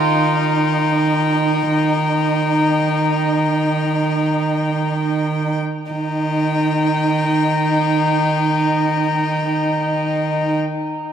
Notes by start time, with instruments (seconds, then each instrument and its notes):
Already playing: cello D#3, violin D#4 G5, viola D#4
5.92 cello D#3, violin D#4 G5, viola D#4